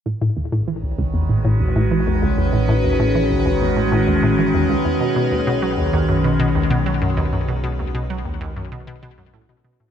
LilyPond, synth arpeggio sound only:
\new Staff \with { instrumentName = "Synth arpeggio sound" } { \clef bass \time 4/4 \key a \lydian \tempo 4 = 97 a,16 a,16 dis,16 a,16 e16 cis,16 cis,16 e,16 a,16 a,16 dis,16 a,16 e16 e,16 cis,16 e,16 | a,16 a,16 dis,16 a,16 e16 cis,16 cis,16 e,16 a,16 a,16 dis,16 a,16 e16 e,16 cis,16 e,16 | b,16 b,16 dis,16 b,16 fis16 dis,16 dis,16 fis,16 b,16 b,16 dis,16 b,16 fis16 fis,16 dis,16 fis,16 | b,16 b,16 dis,16 b,16 fis16 dis,16 dis,16 fis,16 b,16 b,16 b,16 fis,16 a,16 b,16 b,16 a,16 | }